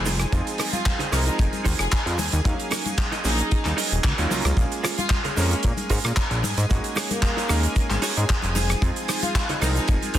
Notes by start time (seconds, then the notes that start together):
Already playing: F1 G#4 G#5
0.05 D#4 F4 G#4 C5, open hi-hat, high conga, shaker
0.19 cross-stick, closed hi-hat, shaker
0.32 F2 F3 G#3 C4 D#4 F4, kick, closed hi-hat, shaker
0.47 closed hi-hat, shaker
0.58 D#4 F4 G#4 A#4, cross-stick, open hi-hat, muted conga, shaker
0.73 F4, closed hi-hat, high conga, shaker
0.85 muted clean electric guitar stroke, kick, clap, closed hi-hat, shaker
0.99 D#4 F4 G#4 C5, closed hi-hat, low conga, shaker
1.11 C2 F3 G#3 C4 D#4 A#4, cross-stick, open hi-hat, muted conga, shaker
1.26 D#4, closed hi-hat, shaker
1.38 F1, muted clean electric guitar stroke, kick, closed hi-hat, shaker
1.53 closed hi-hat, high conga, shaker
1.64 D#2 D#4 F4 G#4 C5, kick, open hi-hat, shaker
1.79 F1 G#4, cross-stick, closed hi-hat, shaker
1.91 G#4, kick, clap, closed hi-hat, shaker
2.06 F2, closed hi-hat, shaker
2.18 D#2, muted clean electric guitar stroke, open hi-hat, high conga, shaker
2.32 D#2, muted clean electric guitar stroke, closed hi-hat, shaker
2.44 D#2 F#3 A#3 C#4 D#4 F5, kick, closed hi-hat, shaker
2.60 closed hi-hat, shaker
2.71 D#4 F#4 A#4 C#5, cross-stick, open hi-hat, muted conga, shaker
2.86 closed hi-hat, high conga, shaker
2.98 muted clean electric guitar stroke, kick, clap, closed hi-hat, shaker
3.12 D#4 F#4 A#4 D#5, closed hi-hat, muted conga, shaker
3.24 A#1 F#3 A#3 C#4 D#4 G#4, open hi-hat, muted conga, shaker
3.38 closed hi-hat, shaker
3.51 muted clean electric guitar stroke, kick, closed hi-hat, shaker
3.65 D#2, clap, closed hi-hat, high conga, shaker
3.77 D#4 F#4 A#4 D#5, open hi-hat, shaker
3.92 D#1, closed hi-hat, shaker
4.04 C#2, kick, clap, closed hi-hat, shaker
4.18 D#2 F#3 A#3 C#4 D#4 F4, closed hi-hat, muted conga, shaker
4.30 C#2 F#3 A#3 C#4 D#4 F4, muted clean electric guitar stroke, open hi-hat, high conga, shaker
4.44 C#2, muted clean electric guitar stroke, cross-stick, closed hi-hat, shaker
4.56 A#1 G#3 A#3 C#4 F4 G#4 G#5, kick, closed hi-hat, shaker
4.72 closed hi-hat, shaker
4.83 F4 G#4 A#4 C#5, cross-stick, open hi-hat, muted conga, shaker
4.98 F4, closed hi-hat, high conga, shaker
5.10 muted clean electric guitar stroke, kick, clap, closed hi-hat, shaker
5.24 F4 G#4 A#4 C#5, closed hi-hat, low conga, shaker
5.36 F2 G#3 A#3 C#4 A#4, open hi-hat, muted conga, shaker
5.51 closed hi-hat, shaker
5.53 shaker
5.63 A#2, muted clean electric guitar stroke, kick, closed hi-hat, shaker
5.77 closed hi-hat, high conga, shaker
5.89 G#2 F4 G#4 A#4 C#5, kick, open hi-hat, shaker
6.04 A#2, cross-stick, closed hi-hat, shaker
6.16 kick, clap, closed hi-hat, shaker
6.31 A#1, closed hi-hat, shaker
6.43 G#2, muted clean electric guitar stroke, open hi-hat, high conga, shaker
6.57 G#2, muted clean electric guitar stroke, closed hi-hat, shaker
6.69 G#1 G#3 A#3 C#4 D#4 F#4, kick, closed hi-hat, shaker
6.84 closed hi-hat, shaker
6.96 D#4 F#4 G#4 C#5, cross-stick, open hi-hat, muted conga, shaker
7.10 A#3, closed hi-hat, high conga, shaker
7.22 muted clean electric guitar stroke, kick, clap, closed hi-hat, shaker
7.37 D#4 F#4 G#4 C#5, closed hi-hat, muted conga, shaker
7.49 D#2 G#3 A#3 C#4 D#4 A#4, cross-stick, open hi-hat, shaker
7.63 closed hi-hat, shaker
7.76 muted clean electric guitar stroke, kick, closed hi-hat, shaker
7.90 G#1, clap, closed hi-hat, high conga, shaker
8.02 D#4 F#4 G#4 C#5, open hi-hat, shaker
8.16 G#2, closed hi-hat, shaker
8.29 kick, clap, closed hi-hat, shaker
8.42 F1, closed hi-hat, muted conga, shaker
8.55 D#4 F4 G#4 C5, open hi-hat, high conga, shaker
8.70 cross-stick, closed hi-hat, shaker
8.81 F2 F3 G#3 C4 D#4 F4, kick, closed hi-hat, shaker
8.96 closed hi-hat, shaker
9.08 D#4 F4 G#4 C5, cross-stick, open hi-hat, muted conga, shaker
9.22 F4, closed hi-hat, high conga, shaker
9.35 muted clean electric guitar stroke, kick, clap, closed hi-hat, shaker
9.49 D#4 F4 G#4 D#5, closed hi-hat, low conga, shaker
9.61 C2 F3 G#3 C4 D#4 A#4, cross-stick, open hi-hat, muted conga, shaker
9.75 D#4, closed hi-hat, shaker
9.88 F1, muted clean electric guitar stroke, kick, closed hi-hat, shaker
10.02 closed hi-hat, high conga, shaker
10.14 D#2 D#4 F4 G#4, kick, open hi-hat, shaker